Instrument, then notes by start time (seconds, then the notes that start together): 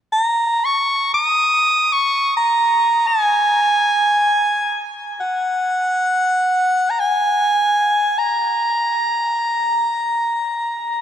soprano saxophone
0.13 A#5
0.65 C#6
1.14 D#6
1.93 C#6
2.37 A#5
3.07 G#5
5.20 F#5
6.90 A#5
7.00 G#5
8.18 A#5